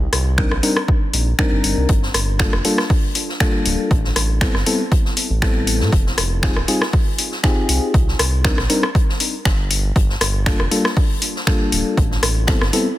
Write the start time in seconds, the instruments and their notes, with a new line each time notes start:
0.13 analog synth bass C2, cross-stick, open hi-hat
0.38 fm electric piano G3 C4 D4 D#4 A#4, finger snap, kick
0.51 analog synth bass A#1, cross-stick
0.63 fm electric piano G3 C4 D4 D#4 A#4, open hi-hat
0.77 cross-stick
0.88 kick
1.14 analog synth bass A#1, open hi-hat
1.39 fm electric piano G3 C4 D4 D#4 A#4, finger snap, kick
1.52 analog synth bass G1
1.64 analog synth bass G1, open hi-hat
1.77 analog synth bass C2
1.89 analog synth bass G1, kick, closed hi-hat
2.03 snare
2.14 analog synth bass G1, cross-stick, closed hi-hat, open hi-hat
2.39 fm electric piano G3 A#3 D4 F4 A4, finger snap, kick, snare, closed hi-hat
2.53 analog synth bass F1, cross-stick
2.65 fm electric piano G3 A#3 D4 F4 A4, closed hi-hat, open hi-hat
2.78 cross-stick, snare
2.90 kick, open hi-hat
3.15 closed hi-hat, open hi-hat
3.29 snare
3.40 fm electric piano G3 A#3 D4 F4 A4, finger snap, kick, snare, closed hi-hat
3.65 analog synth bass D1, closed hi-hat, open hi-hat
3.91 analog synth bass A1, kick, closed hi-hat
4.04 snare
4.16 analog synth bass A1, cross-stick, closed hi-hat, open hi-hat
4.41 fm electric piano G3 B3 C4 E4 A4, finger snap, kick, snare, closed hi-hat
4.55 analog synth bass G1, cross-stick, snare
4.66 fm electric piano G3 B3 C4 E4 A4, closed hi-hat, open hi-hat
4.92 kick, closed hi-hat
5.05 snare
5.17 closed hi-hat, open hi-hat
5.30 analog synth bass A1
5.42 fm electric piano G3 B3 C4 E4 A4, finger snap, kick, snare, closed hi-hat
5.67 closed hi-hat, open hi-hat
5.80 analog synth bass A2, snare
5.92 analog synth bass F1, kick, closed hi-hat
6.06 snare
6.18 analog synth bass F1, cross-stick, closed hi-hat, open hi-hat
6.43 fm electric piano G3 C4 D#4 F4 G#4, finger snap, kick, snare, closed hi-hat
6.56 analog synth bass D#1, cross-stick
6.68 fm electric piano G3 C4 D#4 F4 G#4, closed hi-hat, open hi-hat
6.82 cross-stick, snare
6.93 kick, open hi-hat
7.18 closed hi-hat, open hi-hat
7.32 snare
7.43 fm electric piano C4 D#4 F4 G4 G#4, finger snap, kick, snare, closed hi-hat
7.69 analog synth bass C2, closed hi-hat, open hi-hat
7.94 analog synth bass C2, kick, closed hi-hat
8.08 snare
8.19 analog synth bass C2, cross-stick, closed hi-hat, open hi-hat
8.44 fm electric piano G3 C4 D4 D#4 A#4, finger snap, kick, snare, closed hi-hat
8.58 analog synth bass A#1, cross-stick, snare
8.70 fm electric piano G3 C4 D4 D#4 A#4, closed hi-hat, open hi-hat
8.83 cross-stick
8.95 kick, closed hi-hat
9.09 snare
9.20 closed hi-hat, open hi-hat
9.45 analog synth bass G1, finger snap, kick, snare, closed hi-hat
9.71 closed hi-hat, open hi-hat
9.96 analog synth bass G1, kick, closed hi-hat
10.09 snare
10.21 analog synth bass G1, cross-stick, closed hi-hat, open hi-hat
10.46 fm electric piano G3 A#3 D4 F4 A4, finger snap, kick, snare, closed hi-hat
10.60 analog synth bass F1, cross-stick
10.71 fm electric piano G3 A#3 D4 F4 A4, closed hi-hat, open hi-hat
10.85 cross-stick, snare
10.97 kick, open hi-hat
11.22 closed hi-hat, open hi-hat
11.36 snare
11.47 fm electric piano G3 A#3 D4 F4 A4, finger snap, kick, snare, closed hi-hat
11.72 analog synth bass D1, closed hi-hat, open hi-hat
11.97 analog synth bass A1, kick, closed hi-hat
12.11 snare
12.23 analog synth bass A1, cross-stick, closed hi-hat, open hi-hat
12.47 fm electric piano G3 B3 C4 E4 A4, finger snap, kick, snare, closed hi-hat
12.61 analog synth bass G1, cross-stick, snare
12.73 fm electric piano G3 B3 C4 E4 A4, closed hi-hat, open hi-hat